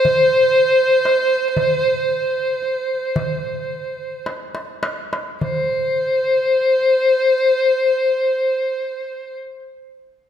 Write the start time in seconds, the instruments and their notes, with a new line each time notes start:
Already playing: violin C5
0.05 darbuka dum
0.56 darbuka ka
1.05 darbuka tek
1.57 darbuka dum
2.09 darbuka ka
2.62 darbuka ka
3.16 darbuka dum
4.26 darbuka tek
4.55 darbuka ka
4.83 darbuka tek
5.13 darbuka ka
5.41 violin C5, darbuka dum